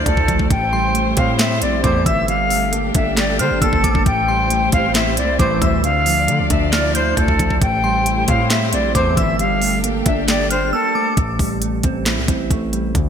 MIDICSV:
0, 0, Header, 1, 8, 480
1, 0, Start_track
1, 0, Tempo, 444444
1, 545, Time_signature, 4, 2, 24, 8
1, 14138, End_track
2, 0, Start_track
2, 0, Title_t, "Synth bell"
2, 0, Program_c, 0, 98
2, 785, Note_on_c, 0, 84, 85
2, 1942, Note_off_c, 0, 84, 0
2, 1985, Note_on_c, 0, 86, 75
2, 2213, Note_off_c, 0, 86, 0
2, 2225, Note_on_c, 0, 88, 88
2, 2453, Note_off_c, 0, 88, 0
2, 3666, Note_on_c, 0, 89, 86
2, 3894, Note_off_c, 0, 89, 0
2, 3905, Note_on_c, 0, 88, 85
2, 4134, Note_off_c, 0, 88, 0
2, 4146, Note_on_c, 0, 86, 83
2, 4374, Note_off_c, 0, 86, 0
2, 4626, Note_on_c, 0, 84, 79
2, 5783, Note_off_c, 0, 84, 0
2, 5824, Note_on_c, 0, 86, 78
2, 6053, Note_off_c, 0, 86, 0
2, 6065, Note_on_c, 0, 88, 75
2, 6294, Note_off_c, 0, 88, 0
2, 7266, Note_on_c, 0, 89, 88
2, 7494, Note_off_c, 0, 89, 0
2, 7507, Note_on_c, 0, 91, 90
2, 7734, Note_off_c, 0, 91, 0
2, 8464, Note_on_c, 0, 84, 88
2, 9622, Note_off_c, 0, 84, 0
2, 9665, Note_on_c, 0, 86, 75
2, 9893, Note_off_c, 0, 86, 0
2, 9905, Note_on_c, 0, 88, 84
2, 10133, Note_off_c, 0, 88, 0
2, 11346, Note_on_c, 0, 89, 85
2, 11574, Note_off_c, 0, 89, 0
2, 11586, Note_on_c, 0, 88, 87
2, 11814, Note_off_c, 0, 88, 0
2, 11827, Note_on_c, 0, 86, 81
2, 12054, Note_off_c, 0, 86, 0
2, 14138, End_track
3, 0, Start_track
3, 0, Title_t, "Flute"
3, 0, Program_c, 1, 73
3, 63, Note_on_c, 1, 69, 93
3, 516, Note_off_c, 1, 69, 0
3, 545, Note_on_c, 1, 79, 103
3, 1222, Note_off_c, 1, 79, 0
3, 1265, Note_on_c, 1, 77, 95
3, 1476, Note_off_c, 1, 77, 0
3, 1505, Note_on_c, 1, 76, 85
3, 1716, Note_off_c, 1, 76, 0
3, 1745, Note_on_c, 1, 74, 90
3, 1956, Note_off_c, 1, 74, 0
3, 1986, Note_on_c, 1, 72, 84
3, 2197, Note_off_c, 1, 72, 0
3, 2225, Note_on_c, 1, 76, 96
3, 2436, Note_off_c, 1, 76, 0
3, 2466, Note_on_c, 1, 77, 102
3, 2948, Note_off_c, 1, 77, 0
3, 3186, Note_on_c, 1, 76, 86
3, 3397, Note_off_c, 1, 76, 0
3, 3426, Note_on_c, 1, 74, 94
3, 3637, Note_off_c, 1, 74, 0
3, 3667, Note_on_c, 1, 72, 79
3, 3877, Note_off_c, 1, 72, 0
3, 3907, Note_on_c, 1, 69, 94
3, 4358, Note_off_c, 1, 69, 0
3, 4386, Note_on_c, 1, 79, 107
3, 5063, Note_off_c, 1, 79, 0
3, 5106, Note_on_c, 1, 77, 91
3, 5317, Note_off_c, 1, 77, 0
3, 5345, Note_on_c, 1, 76, 88
3, 5556, Note_off_c, 1, 76, 0
3, 5585, Note_on_c, 1, 74, 86
3, 5796, Note_off_c, 1, 74, 0
3, 5826, Note_on_c, 1, 72, 90
3, 6037, Note_off_c, 1, 72, 0
3, 6066, Note_on_c, 1, 76, 89
3, 6277, Note_off_c, 1, 76, 0
3, 6304, Note_on_c, 1, 77, 106
3, 6982, Note_off_c, 1, 77, 0
3, 7024, Note_on_c, 1, 76, 82
3, 7236, Note_off_c, 1, 76, 0
3, 7266, Note_on_c, 1, 74, 91
3, 7477, Note_off_c, 1, 74, 0
3, 7507, Note_on_c, 1, 72, 76
3, 7717, Note_off_c, 1, 72, 0
3, 7744, Note_on_c, 1, 69, 90
3, 8196, Note_off_c, 1, 69, 0
3, 8224, Note_on_c, 1, 79, 103
3, 8902, Note_off_c, 1, 79, 0
3, 8945, Note_on_c, 1, 77, 91
3, 9156, Note_off_c, 1, 77, 0
3, 9185, Note_on_c, 1, 76, 82
3, 9396, Note_off_c, 1, 76, 0
3, 9426, Note_on_c, 1, 74, 95
3, 9637, Note_off_c, 1, 74, 0
3, 9666, Note_on_c, 1, 72, 83
3, 9877, Note_off_c, 1, 72, 0
3, 9905, Note_on_c, 1, 76, 96
3, 10116, Note_off_c, 1, 76, 0
3, 10146, Note_on_c, 1, 77, 105
3, 10573, Note_off_c, 1, 77, 0
3, 10865, Note_on_c, 1, 76, 86
3, 11076, Note_off_c, 1, 76, 0
3, 11106, Note_on_c, 1, 74, 95
3, 11317, Note_off_c, 1, 74, 0
3, 11347, Note_on_c, 1, 72, 81
3, 11558, Note_off_c, 1, 72, 0
3, 11586, Note_on_c, 1, 69, 94
3, 12037, Note_off_c, 1, 69, 0
3, 14138, End_track
4, 0, Start_track
4, 0, Title_t, "String section"
4, 0, Program_c, 2, 48
4, 0, Note_on_c, 2, 50, 86
4, 0, Note_on_c, 2, 53, 78
4, 0, Note_on_c, 2, 62, 78
4, 0, Note_on_c, 2, 74, 93
4, 526, Note_off_c, 2, 50, 0
4, 526, Note_off_c, 2, 53, 0
4, 526, Note_off_c, 2, 62, 0
4, 527, Note_off_c, 2, 74, 0
4, 545, Note_on_c, 2, 64, 78
4, 545, Note_on_c, 2, 72, 97
4, 546, Note_on_c, 2, 57, 87
4, 546, Note_on_c, 2, 67, 78
4, 2446, Note_off_c, 2, 64, 0
4, 2446, Note_off_c, 2, 72, 0
4, 2447, Note_off_c, 2, 57, 0
4, 2447, Note_off_c, 2, 67, 0
4, 2465, Note_on_c, 2, 55, 85
4, 2465, Note_on_c, 2, 67, 94
4, 2465, Note_on_c, 2, 69, 80
4, 2466, Note_on_c, 2, 62, 75
4, 4366, Note_off_c, 2, 55, 0
4, 4366, Note_off_c, 2, 62, 0
4, 4366, Note_off_c, 2, 67, 0
4, 4366, Note_off_c, 2, 69, 0
4, 4384, Note_on_c, 2, 57, 87
4, 4384, Note_on_c, 2, 67, 77
4, 4384, Note_on_c, 2, 72, 93
4, 4385, Note_on_c, 2, 64, 77
4, 6285, Note_off_c, 2, 57, 0
4, 6286, Note_off_c, 2, 64, 0
4, 6286, Note_off_c, 2, 67, 0
4, 6286, Note_off_c, 2, 72, 0
4, 6304, Note_on_c, 2, 53, 78
4, 6305, Note_on_c, 2, 50, 85
4, 6305, Note_on_c, 2, 62, 79
4, 6305, Note_on_c, 2, 74, 94
4, 8206, Note_off_c, 2, 50, 0
4, 8206, Note_off_c, 2, 53, 0
4, 8206, Note_off_c, 2, 62, 0
4, 8206, Note_off_c, 2, 74, 0
4, 8225, Note_on_c, 2, 57, 85
4, 8225, Note_on_c, 2, 64, 79
4, 8225, Note_on_c, 2, 67, 80
4, 8225, Note_on_c, 2, 72, 94
4, 10126, Note_off_c, 2, 57, 0
4, 10126, Note_off_c, 2, 64, 0
4, 10126, Note_off_c, 2, 67, 0
4, 10126, Note_off_c, 2, 72, 0
4, 10145, Note_on_c, 2, 69, 79
4, 10146, Note_on_c, 2, 55, 85
4, 10146, Note_on_c, 2, 62, 76
4, 10146, Note_on_c, 2, 67, 94
4, 12046, Note_off_c, 2, 62, 0
4, 12046, Note_off_c, 2, 69, 0
4, 12047, Note_off_c, 2, 55, 0
4, 12047, Note_off_c, 2, 67, 0
4, 14138, End_track
5, 0, Start_track
5, 0, Title_t, "Clean electric guitar"
5, 0, Program_c, 3, 27
5, 0, Note_on_c, 3, 62, 85
5, 0, Note_on_c, 3, 64, 83
5, 70, Note_on_c, 3, 57, 94
5, 307, Note_on_c, 3, 53, 78
5, 546, Note_off_c, 3, 53, 0
5, 546, Note_off_c, 3, 62, 0
5, 546, Note_off_c, 3, 64, 0
5, 548, Note_off_c, 3, 57, 0
5, 548, Note_on_c, 3, 45, 89
5, 785, Note_on_c, 3, 55, 73
5, 1026, Note_on_c, 3, 57, 83
5, 1266, Note_on_c, 3, 60, 100
5, 1503, Note_on_c, 3, 64, 75
5, 1732, Note_off_c, 3, 60, 0
5, 1745, Note_on_c, 3, 60, 93
5, 1747, Note_off_c, 3, 45, 0
5, 1969, Note_off_c, 3, 57, 0
5, 1978, Note_off_c, 3, 55, 0
5, 1982, Note_on_c, 3, 57, 90
5, 2226, Note_on_c, 3, 55, 80
5, 2453, Note_off_c, 3, 55, 0
5, 2464, Note_off_c, 3, 57, 0
5, 2465, Note_off_c, 3, 60, 0
5, 2465, Note_off_c, 3, 64, 0
5, 2466, Note_on_c, 3, 55, 95
5, 2708, Note_on_c, 3, 57, 76
5, 2941, Note_off_c, 3, 55, 0
5, 2946, Note_on_c, 3, 58, 78
5, 3186, Note_on_c, 3, 62, 93
5, 3420, Note_on_c, 3, 67, 80
5, 3652, Note_off_c, 3, 62, 0
5, 3665, Note_on_c, 3, 62, 82
5, 3894, Note_off_c, 3, 58, 0
5, 3907, Note_off_c, 3, 57, 0
5, 3907, Note_on_c, 3, 58, 101
5, 4145, Note_on_c, 3, 57, 74
5, 4383, Note_off_c, 3, 67, 0
5, 4385, Note_off_c, 3, 57, 0
5, 4385, Note_off_c, 3, 62, 0
5, 4386, Note_off_c, 3, 58, 0
5, 4387, Note_on_c, 3, 45, 96
5, 4624, Note_on_c, 3, 55, 77
5, 4865, Note_on_c, 3, 57, 82
5, 5107, Note_on_c, 3, 60, 95
5, 5345, Note_on_c, 3, 64, 82
5, 5571, Note_off_c, 3, 60, 0
5, 5584, Note_on_c, 3, 60, 82
5, 5586, Note_off_c, 3, 45, 0
5, 5814, Note_off_c, 3, 57, 0
5, 5822, Note_off_c, 3, 55, 0
5, 5827, Note_on_c, 3, 57, 98
5, 6064, Note_on_c, 3, 55, 80
5, 6305, Note_off_c, 3, 55, 0
5, 6305, Note_off_c, 3, 60, 0
5, 6305, Note_off_c, 3, 64, 0
5, 6306, Note_off_c, 3, 57, 0
5, 6309, Note_on_c, 3, 50, 92
5, 6543, Note_on_c, 3, 53, 77
5, 6784, Note_on_c, 3, 57, 81
5, 7023, Note_on_c, 3, 62, 92
5, 7265, Note_on_c, 3, 64, 87
5, 7493, Note_off_c, 3, 62, 0
5, 7506, Note_on_c, 3, 62, 86
5, 7507, Note_off_c, 3, 50, 0
5, 7735, Note_off_c, 3, 57, 0
5, 7744, Note_off_c, 3, 53, 0
5, 7748, Note_on_c, 3, 57, 96
5, 7985, Note_on_c, 3, 53, 81
5, 8225, Note_off_c, 3, 53, 0
5, 8225, Note_on_c, 3, 45, 84
5, 8226, Note_off_c, 3, 62, 0
5, 8226, Note_off_c, 3, 64, 0
5, 8227, Note_off_c, 3, 57, 0
5, 8463, Note_on_c, 3, 55, 74
5, 8705, Note_on_c, 3, 57, 80
5, 8946, Note_on_c, 3, 60, 97
5, 9183, Note_on_c, 3, 64, 79
5, 9413, Note_off_c, 3, 60, 0
5, 9425, Note_on_c, 3, 60, 93
5, 9426, Note_off_c, 3, 45, 0
5, 9649, Note_off_c, 3, 57, 0
5, 9657, Note_off_c, 3, 55, 0
5, 9662, Note_on_c, 3, 57, 92
5, 9906, Note_on_c, 3, 55, 77
5, 10133, Note_off_c, 3, 55, 0
5, 10144, Note_off_c, 3, 57, 0
5, 10144, Note_off_c, 3, 64, 0
5, 10146, Note_off_c, 3, 60, 0
5, 10146, Note_on_c, 3, 55, 94
5, 10387, Note_on_c, 3, 57, 76
5, 10621, Note_off_c, 3, 55, 0
5, 10625, Note_on_c, 3, 58, 79
5, 10866, Note_on_c, 3, 62, 97
5, 11099, Note_on_c, 3, 67, 81
5, 11332, Note_off_c, 3, 62, 0
5, 11345, Note_on_c, 3, 62, 82
5, 11573, Note_off_c, 3, 58, 0
5, 11585, Note_on_c, 3, 58, 99
5, 11586, Note_off_c, 3, 57, 0
5, 11824, Note_on_c, 3, 57, 75
5, 12062, Note_off_c, 3, 67, 0
5, 12065, Note_off_c, 3, 57, 0
5, 12065, Note_off_c, 3, 62, 0
5, 12065, Note_on_c, 3, 45, 93
5, 12066, Note_off_c, 3, 58, 0
5, 12303, Note_on_c, 3, 55, 77
5, 12545, Note_on_c, 3, 57, 79
5, 12786, Note_on_c, 3, 60, 95
5, 13024, Note_on_c, 3, 64, 80
5, 13251, Note_off_c, 3, 60, 0
5, 13264, Note_on_c, 3, 60, 82
5, 13265, Note_off_c, 3, 45, 0
5, 13493, Note_off_c, 3, 57, 0
5, 13502, Note_off_c, 3, 55, 0
5, 13506, Note_on_c, 3, 57, 98
5, 13744, Note_on_c, 3, 55, 77
5, 13985, Note_off_c, 3, 55, 0
5, 13985, Note_off_c, 3, 60, 0
5, 13985, Note_off_c, 3, 64, 0
5, 13986, Note_off_c, 3, 57, 0
5, 13989, Note_on_c, 3, 50, 88
5, 14138, Note_off_c, 3, 50, 0
5, 14138, End_track
6, 0, Start_track
6, 0, Title_t, "Analog polysynth"
6, 0, Program_c, 4, 90
6, 1986, Note_on_c, 4, 36, 98
6, 1986, Note_on_c, 4, 45, 98
6, 1986, Note_on_c, 4, 52, 118
6, 2442, Note_off_c, 4, 36, 0
6, 2442, Note_off_c, 4, 45, 0
6, 2442, Note_off_c, 4, 52, 0
6, 5825, Note_on_c, 4, 36, 101
6, 5825, Note_on_c, 4, 45, 98
6, 5825, Note_on_c, 4, 52, 111
6, 6281, Note_off_c, 4, 36, 0
6, 6281, Note_off_c, 4, 45, 0
6, 6281, Note_off_c, 4, 52, 0
6, 9666, Note_on_c, 4, 36, 98
6, 9666, Note_on_c, 4, 45, 96
6, 9666, Note_on_c, 4, 52, 117
6, 10122, Note_off_c, 4, 36, 0
6, 10122, Note_off_c, 4, 45, 0
6, 10122, Note_off_c, 4, 52, 0
6, 14138, End_track
7, 0, Start_track
7, 0, Title_t, "808-style bass"
7, 0, Program_c, 5, 38
7, 66, Note_on_c, 5, 38, 108
7, 527, Note_off_c, 5, 38, 0
7, 546, Note_on_c, 5, 33, 111
7, 1237, Note_off_c, 5, 33, 0
7, 1265, Note_on_c, 5, 45, 105
7, 1746, Note_on_c, 5, 34, 100
7, 1762, Note_off_c, 5, 45, 0
7, 1974, Note_off_c, 5, 34, 0
7, 1986, Note_on_c, 5, 40, 110
7, 2216, Note_off_c, 5, 40, 0
7, 2226, Note_on_c, 5, 31, 103
7, 3147, Note_off_c, 5, 31, 0
7, 3185, Note_on_c, 5, 31, 109
7, 3666, Note_on_c, 5, 50, 104
7, 3682, Note_off_c, 5, 31, 0
7, 3786, Note_on_c, 5, 31, 102
7, 3802, Note_off_c, 5, 50, 0
7, 3900, Note_off_c, 5, 31, 0
7, 3906, Note_on_c, 5, 31, 110
7, 4146, Note_on_c, 5, 33, 98
7, 4163, Note_off_c, 5, 31, 0
7, 4266, Note_on_c, 5, 31, 99
7, 4282, Note_off_c, 5, 33, 0
7, 4380, Note_off_c, 5, 31, 0
7, 4386, Note_on_c, 5, 33, 115
7, 5077, Note_off_c, 5, 33, 0
7, 5106, Note_on_c, 5, 33, 104
7, 5586, Note_on_c, 5, 36, 100
7, 5602, Note_off_c, 5, 33, 0
7, 5814, Note_off_c, 5, 36, 0
7, 5826, Note_on_c, 5, 33, 110
7, 6056, Note_off_c, 5, 33, 0
7, 6066, Note_on_c, 5, 38, 105
7, 6785, Note_on_c, 5, 50, 102
7, 6801, Note_off_c, 5, 38, 0
7, 6905, Note_on_c, 5, 38, 98
7, 6921, Note_off_c, 5, 50, 0
7, 7019, Note_off_c, 5, 38, 0
7, 7025, Note_on_c, 5, 38, 105
7, 7717, Note_off_c, 5, 38, 0
7, 7745, Note_on_c, 5, 38, 108
7, 8206, Note_off_c, 5, 38, 0
7, 8225, Note_on_c, 5, 33, 111
7, 8917, Note_off_c, 5, 33, 0
7, 8945, Note_on_c, 5, 45, 105
7, 9426, Note_on_c, 5, 34, 97
7, 9442, Note_off_c, 5, 45, 0
7, 9654, Note_off_c, 5, 34, 0
7, 9665, Note_on_c, 5, 40, 111
7, 9896, Note_off_c, 5, 40, 0
7, 9905, Note_on_c, 5, 31, 107
7, 10827, Note_off_c, 5, 31, 0
7, 10866, Note_on_c, 5, 31, 106
7, 11586, Note_off_c, 5, 31, 0
7, 12065, Note_on_c, 5, 33, 114
7, 12296, Note_off_c, 5, 33, 0
7, 12305, Note_on_c, 5, 33, 102
7, 12766, Note_off_c, 5, 33, 0
7, 12786, Note_on_c, 5, 33, 100
7, 13146, Note_on_c, 5, 36, 98
7, 13162, Note_off_c, 5, 33, 0
7, 13260, Note_off_c, 5, 36, 0
7, 13266, Note_on_c, 5, 33, 101
7, 13496, Note_off_c, 5, 33, 0
7, 13506, Note_on_c, 5, 33, 107
7, 13967, Note_off_c, 5, 33, 0
7, 13986, Note_on_c, 5, 38, 109
7, 14138, Note_off_c, 5, 38, 0
7, 14138, End_track
8, 0, Start_track
8, 0, Title_t, "Drums"
8, 66, Note_on_c, 9, 36, 95
8, 67, Note_on_c, 9, 42, 81
8, 174, Note_off_c, 9, 36, 0
8, 175, Note_off_c, 9, 42, 0
8, 186, Note_on_c, 9, 36, 93
8, 294, Note_off_c, 9, 36, 0
8, 306, Note_on_c, 9, 36, 96
8, 308, Note_on_c, 9, 42, 80
8, 414, Note_off_c, 9, 36, 0
8, 416, Note_off_c, 9, 42, 0
8, 426, Note_on_c, 9, 36, 96
8, 534, Note_off_c, 9, 36, 0
8, 546, Note_on_c, 9, 36, 122
8, 546, Note_on_c, 9, 42, 77
8, 654, Note_off_c, 9, 36, 0
8, 654, Note_off_c, 9, 42, 0
8, 1025, Note_on_c, 9, 42, 79
8, 1133, Note_off_c, 9, 42, 0
8, 1261, Note_on_c, 9, 42, 91
8, 1266, Note_on_c, 9, 36, 107
8, 1369, Note_off_c, 9, 42, 0
8, 1374, Note_off_c, 9, 36, 0
8, 1503, Note_on_c, 9, 42, 74
8, 1505, Note_on_c, 9, 38, 109
8, 1509, Note_on_c, 9, 39, 86
8, 1611, Note_off_c, 9, 42, 0
8, 1613, Note_off_c, 9, 38, 0
8, 1617, Note_off_c, 9, 39, 0
8, 1745, Note_on_c, 9, 42, 86
8, 1853, Note_off_c, 9, 42, 0
8, 1986, Note_on_c, 9, 36, 95
8, 1988, Note_on_c, 9, 42, 83
8, 2094, Note_off_c, 9, 36, 0
8, 2096, Note_off_c, 9, 42, 0
8, 2226, Note_on_c, 9, 36, 94
8, 2228, Note_on_c, 9, 42, 78
8, 2334, Note_off_c, 9, 36, 0
8, 2336, Note_off_c, 9, 42, 0
8, 2466, Note_on_c, 9, 42, 78
8, 2574, Note_off_c, 9, 42, 0
8, 2705, Note_on_c, 9, 46, 80
8, 2813, Note_off_c, 9, 46, 0
8, 2945, Note_on_c, 9, 42, 78
8, 3053, Note_off_c, 9, 42, 0
8, 3181, Note_on_c, 9, 42, 88
8, 3186, Note_on_c, 9, 36, 106
8, 3289, Note_off_c, 9, 42, 0
8, 3294, Note_off_c, 9, 36, 0
8, 3424, Note_on_c, 9, 42, 75
8, 3426, Note_on_c, 9, 38, 112
8, 3429, Note_on_c, 9, 39, 87
8, 3532, Note_off_c, 9, 42, 0
8, 3534, Note_off_c, 9, 38, 0
8, 3537, Note_off_c, 9, 39, 0
8, 3665, Note_on_c, 9, 42, 86
8, 3773, Note_off_c, 9, 42, 0
8, 3906, Note_on_c, 9, 36, 96
8, 3908, Note_on_c, 9, 42, 81
8, 4014, Note_off_c, 9, 36, 0
8, 4016, Note_off_c, 9, 42, 0
8, 4026, Note_on_c, 9, 36, 91
8, 4134, Note_off_c, 9, 36, 0
8, 4146, Note_on_c, 9, 36, 92
8, 4149, Note_on_c, 9, 42, 77
8, 4254, Note_off_c, 9, 36, 0
8, 4257, Note_off_c, 9, 42, 0
8, 4266, Note_on_c, 9, 36, 98
8, 4374, Note_off_c, 9, 36, 0
8, 4386, Note_on_c, 9, 36, 122
8, 4386, Note_on_c, 9, 42, 78
8, 4494, Note_off_c, 9, 36, 0
8, 4494, Note_off_c, 9, 42, 0
8, 4865, Note_on_c, 9, 42, 78
8, 4973, Note_off_c, 9, 42, 0
8, 5102, Note_on_c, 9, 42, 85
8, 5106, Note_on_c, 9, 36, 103
8, 5210, Note_off_c, 9, 42, 0
8, 5214, Note_off_c, 9, 36, 0
8, 5343, Note_on_c, 9, 42, 75
8, 5345, Note_on_c, 9, 38, 109
8, 5349, Note_on_c, 9, 39, 85
8, 5451, Note_off_c, 9, 42, 0
8, 5453, Note_off_c, 9, 38, 0
8, 5457, Note_off_c, 9, 39, 0
8, 5585, Note_on_c, 9, 42, 87
8, 5693, Note_off_c, 9, 42, 0
8, 5826, Note_on_c, 9, 36, 97
8, 5828, Note_on_c, 9, 42, 85
8, 5934, Note_off_c, 9, 36, 0
8, 5936, Note_off_c, 9, 42, 0
8, 6066, Note_on_c, 9, 36, 98
8, 6068, Note_on_c, 9, 42, 79
8, 6174, Note_off_c, 9, 36, 0
8, 6176, Note_off_c, 9, 42, 0
8, 6306, Note_on_c, 9, 42, 81
8, 6414, Note_off_c, 9, 42, 0
8, 6545, Note_on_c, 9, 46, 80
8, 6653, Note_off_c, 9, 46, 0
8, 6785, Note_on_c, 9, 42, 80
8, 6893, Note_off_c, 9, 42, 0
8, 7021, Note_on_c, 9, 42, 92
8, 7025, Note_on_c, 9, 36, 108
8, 7129, Note_off_c, 9, 42, 0
8, 7133, Note_off_c, 9, 36, 0
8, 7263, Note_on_c, 9, 42, 77
8, 7265, Note_on_c, 9, 38, 113
8, 7269, Note_on_c, 9, 39, 85
8, 7371, Note_off_c, 9, 42, 0
8, 7373, Note_off_c, 9, 38, 0
8, 7377, Note_off_c, 9, 39, 0
8, 7505, Note_on_c, 9, 42, 85
8, 7613, Note_off_c, 9, 42, 0
8, 7745, Note_on_c, 9, 36, 95
8, 7747, Note_on_c, 9, 42, 81
8, 7853, Note_off_c, 9, 36, 0
8, 7855, Note_off_c, 9, 42, 0
8, 7866, Note_on_c, 9, 36, 93
8, 7974, Note_off_c, 9, 36, 0
8, 7985, Note_on_c, 9, 36, 96
8, 7987, Note_on_c, 9, 42, 80
8, 8093, Note_off_c, 9, 36, 0
8, 8095, Note_off_c, 9, 42, 0
8, 8105, Note_on_c, 9, 36, 97
8, 8213, Note_off_c, 9, 36, 0
8, 8225, Note_on_c, 9, 36, 127
8, 8225, Note_on_c, 9, 42, 78
8, 8333, Note_off_c, 9, 36, 0
8, 8333, Note_off_c, 9, 42, 0
8, 8705, Note_on_c, 9, 42, 80
8, 8813, Note_off_c, 9, 42, 0
8, 8940, Note_on_c, 9, 42, 91
8, 8945, Note_on_c, 9, 36, 106
8, 9048, Note_off_c, 9, 42, 0
8, 9053, Note_off_c, 9, 36, 0
8, 9183, Note_on_c, 9, 42, 74
8, 9185, Note_on_c, 9, 38, 113
8, 9188, Note_on_c, 9, 39, 86
8, 9291, Note_off_c, 9, 42, 0
8, 9293, Note_off_c, 9, 38, 0
8, 9296, Note_off_c, 9, 39, 0
8, 9424, Note_on_c, 9, 42, 88
8, 9532, Note_off_c, 9, 42, 0
8, 9666, Note_on_c, 9, 36, 96
8, 9667, Note_on_c, 9, 42, 82
8, 9774, Note_off_c, 9, 36, 0
8, 9775, Note_off_c, 9, 42, 0
8, 9906, Note_on_c, 9, 36, 95
8, 9908, Note_on_c, 9, 42, 76
8, 10014, Note_off_c, 9, 36, 0
8, 10016, Note_off_c, 9, 42, 0
8, 10146, Note_on_c, 9, 42, 76
8, 10254, Note_off_c, 9, 42, 0
8, 10385, Note_on_c, 9, 46, 82
8, 10493, Note_off_c, 9, 46, 0
8, 10625, Note_on_c, 9, 42, 81
8, 10733, Note_off_c, 9, 42, 0
8, 10862, Note_on_c, 9, 42, 85
8, 10866, Note_on_c, 9, 36, 104
8, 10970, Note_off_c, 9, 42, 0
8, 10974, Note_off_c, 9, 36, 0
8, 11104, Note_on_c, 9, 42, 74
8, 11106, Note_on_c, 9, 38, 109
8, 11110, Note_on_c, 9, 39, 89
8, 11212, Note_off_c, 9, 42, 0
8, 11214, Note_off_c, 9, 38, 0
8, 11218, Note_off_c, 9, 39, 0
8, 11346, Note_on_c, 9, 42, 90
8, 11454, Note_off_c, 9, 42, 0
8, 12066, Note_on_c, 9, 36, 125
8, 12066, Note_on_c, 9, 42, 75
8, 12174, Note_off_c, 9, 36, 0
8, 12174, Note_off_c, 9, 42, 0
8, 12305, Note_on_c, 9, 36, 93
8, 12306, Note_on_c, 9, 46, 76
8, 12413, Note_off_c, 9, 36, 0
8, 12414, Note_off_c, 9, 46, 0
8, 12546, Note_on_c, 9, 42, 77
8, 12654, Note_off_c, 9, 42, 0
8, 12781, Note_on_c, 9, 42, 91
8, 12786, Note_on_c, 9, 36, 103
8, 12889, Note_off_c, 9, 42, 0
8, 12894, Note_off_c, 9, 36, 0
8, 13024, Note_on_c, 9, 42, 72
8, 13026, Note_on_c, 9, 38, 104
8, 13029, Note_on_c, 9, 39, 88
8, 13132, Note_off_c, 9, 42, 0
8, 13134, Note_off_c, 9, 38, 0
8, 13137, Note_off_c, 9, 39, 0
8, 13266, Note_on_c, 9, 36, 97
8, 13266, Note_on_c, 9, 42, 76
8, 13374, Note_off_c, 9, 36, 0
8, 13374, Note_off_c, 9, 42, 0
8, 13506, Note_on_c, 9, 36, 94
8, 13508, Note_on_c, 9, 42, 80
8, 13614, Note_off_c, 9, 36, 0
8, 13616, Note_off_c, 9, 42, 0
8, 13748, Note_on_c, 9, 42, 75
8, 13856, Note_off_c, 9, 42, 0
8, 13986, Note_on_c, 9, 36, 120
8, 13986, Note_on_c, 9, 42, 73
8, 14094, Note_off_c, 9, 36, 0
8, 14094, Note_off_c, 9, 42, 0
8, 14138, End_track
0, 0, End_of_file